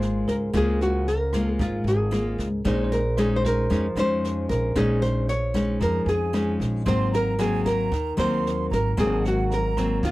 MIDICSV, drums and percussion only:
0, 0, Header, 1, 2, 480
1, 0, Start_track
1, 0, Key_signature, -5, "major"
1, 0, Tempo, 527380
1, 484, Time_signature, 4, 2, 24, 8
1, 9205, End_track
2, 0, Start_track
2, 0, Title_t, "Drums"
2, 9, Note_on_c, 9, 38, 23
2, 100, Note_off_c, 9, 38, 0
2, 250, Note_on_c, 9, 36, 21
2, 251, Note_on_c, 9, 38, 22
2, 341, Note_off_c, 9, 36, 0
2, 342, Note_off_c, 9, 38, 0
2, 488, Note_on_c, 9, 37, 53
2, 488, Note_on_c, 9, 38, 23
2, 489, Note_on_c, 9, 36, 61
2, 579, Note_off_c, 9, 37, 0
2, 579, Note_off_c, 9, 38, 0
2, 580, Note_off_c, 9, 36, 0
2, 730, Note_on_c, 9, 38, 24
2, 821, Note_off_c, 9, 38, 0
2, 972, Note_on_c, 9, 38, 22
2, 1063, Note_off_c, 9, 38, 0
2, 1209, Note_on_c, 9, 37, 59
2, 1209, Note_on_c, 9, 38, 23
2, 1211, Note_on_c, 9, 36, 26
2, 1300, Note_off_c, 9, 37, 0
2, 1300, Note_off_c, 9, 38, 0
2, 1302, Note_off_c, 9, 36, 0
2, 1451, Note_on_c, 9, 38, 24
2, 1452, Note_on_c, 9, 36, 60
2, 1542, Note_off_c, 9, 38, 0
2, 1543, Note_off_c, 9, 36, 0
2, 1694, Note_on_c, 9, 38, 26
2, 1785, Note_off_c, 9, 38, 0
2, 1932, Note_on_c, 9, 37, 54
2, 1932, Note_on_c, 9, 38, 25
2, 2023, Note_off_c, 9, 37, 0
2, 2023, Note_off_c, 9, 38, 0
2, 2172, Note_on_c, 9, 36, 23
2, 2172, Note_on_c, 9, 38, 24
2, 2263, Note_off_c, 9, 36, 0
2, 2263, Note_off_c, 9, 38, 0
2, 2410, Note_on_c, 9, 38, 24
2, 2413, Note_on_c, 9, 36, 54
2, 2501, Note_off_c, 9, 38, 0
2, 2504, Note_off_c, 9, 36, 0
2, 2650, Note_on_c, 9, 38, 23
2, 2741, Note_off_c, 9, 38, 0
2, 2886, Note_on_c, 9, 37, 54
2, 2886, Note_on_c, 9, 38, 22
2, 2977, Note_off_c, 9, 37, 0
2, 2977, Note_off_c, 9, 38, 0
2, 3134, Note_on_c, 9, 36, 24
2, 3135, Note_on_c, 9, 38, 24
2, 3225, Note_off_c, 9, 36, 0
2, 3226, Note_off_c, 9, 38, 0
2, 3375, Note_on_c, 9, 36, 59
2, 3377, Note_on_c, 9, 38, 25
2, 3466, Note_off_c, 9, 36, 0
2, 3468, Note_off_c, 9, 38, 0
2, 3613, Note_on_c, 9, 37, 59
2, 3613, Note_on_c, 9, 38, 25
2, 3704, Note_off_c, 9, 37, 0
2, 3704, Note_off_c, 9, 38, 0
2, 3856, Note_on_c, 9, 38, 26
2, 3947, Note_off_c, 9, 38, 0
2, 4092, Note_on_c, 9, 36, 21
2, 4094, Note_on_c, 9, 38, 20
2, 4183, Note_off_c, 9, 36, 0
2, 4185, Note_off_c, 9, 38, 0
2, 4328, Note_on_c, 9, 37, 52
2, 4328, Note_on_c, 9, 38, 23
2, 4330, Note_on_c, 9, 36, 54
2, 4419, Note_off_c, 9, 37, 0
2, 4419, Note_off_c, 9, 38, 0
2, 4421, Note_off_c, 9, 36, 0
2, 4571, Note_on_c, 9, 38, 22
2, 4662, Note_off_c, 9, 38, 0
2, 4803, Note_on_c, 9, 38, 22
2, 4894, Note_off_c, 9, 38, 0
2, 5047, Note_on_c, 9, 36, 24
2, 5050, Note_on_c, 9, 37, 53
2, 5050, Note_on_c, 9, 38, 22
2, 5138, Note_off_c, 9, 36, 0
2, 5141, Note_off_c, 9, 37, 0
2, 5141, Note_off_c, 9, 38, 0
2, 5284, Note_on_c, 9, 38, 26
2, 5287, Note_on_c, 9, 36, 59
2, 5375, Note_off_c, 9, 38, 0
2, 5378, Note_off_c, 9, 36, 0
2, 5525, Note_on_c, 9, 38, 23
2, 5616, Note_off_c, 9, 38, 0
2, 5769, Note_on_c, 9, 37, 59
2, 5769, Note_on_c, 9, 38, 22
2, 5860, Note_off_c, 9, 37, 0
2, 5860, Note_off_c, 9, 38, 0
2, 6006, Note_on_c, 9, 36, 20
2, 6009, Note_on_c, 9, 38, 20
2, 6097, Note_off_c, 9, 36, 0
2, 6100, Note_off_c, 9, 38, 0
2, 6247, Note_on_c, 9, 36, 53
2, 6247, Note_on_c, 9, 38, 23
2, 6338, Note_off_c, 9, 36, 0
2, 6338, Note_off_c, 9, 38, 0
2, 6488, Note_on_c, 9, 38, 24
2, 6579, Note_off_c, 9, 38, 0
2, 6728, Note_on_c, 9, 37, 61
2, 6728, Note_on_c, 9, 38, 23
2, 6819, Note_off_c, 9, 37, 0
2, 6819, Note_off_c, 9, 38, 0
2, 6967, Note_on_c, 9, 36, 24
2, 6969, Note_on_c, 9, 38, 24
2, 7058, Note_off_c, 9, 36, 0
2, 7060, Note_off_c, 9, 38, 0
2, 7207, Note_on_c, 9, 38, 22
2, 7208, Note_on_c, 9, 36, 58
2, 7298, Note_off_c, 9, 38, 0
2, 7299, Note_off_c, 9, 36, 0
2, 7451, Note_on_c, 9, 37, 61
2, 7451, Note_on_c, 9, 38, 24
2, 7542, Note_off_c, 9, 37, 0
2, 7542, Note_off_c, 9, 38, 0
2, 7699, Note_on_c, 9, 38, 23
2, 7790, Note_off_c, 9, 38, 0
2, 7931, Note_on_c, 9, 36, 22
2, 7936, Note_on_c, 9, 38, 22
2, 8022, Note_off_c, 9, 36, 0
2, 8027, Note_off_c, 9, 38, 0
2, 8170, Note_on_c, 9, 36, 54
2, 8170, Note_on_c, 9, 37, 54
2, 8170, Note_on_c, 9, 38, 22
2, 8261, Note_off_c, 9, 36, 0
2, 8261, Note_off_c, 9, 37, 0
2, 8261, Note_off_c, 9, 38, 0
2, 8412, Note_on_c, 9, 38, 23
2, 8503, Note_off_c, 9, 38, 0
2, 8649, Note_on_c, 9, 38, 22
2, 8740, Note_off_c, 9, 38, 0
2, 8890, Note_on_c, 9, 36, 24
2, 8893, Note_on_c, 9, 37, 56
2, 8893, Note_on_c, 9, 38, 25
2, 8981, Note_off_c, 9, 36, 0
2, 8984, Note_off_c, 9, 37, 0
2, 8984, Note_off_c, 9, 38, 0
2, 9129, Note_on_c, 9, 38, 25
2, 9130, Note_on_c, 9, 36, 62
2, 9205, Note_off_c, 9, 36, 0
2, 9205, Note_off_c, 9, 38, 0
2, 9205, End_track
0, 0, End_of_file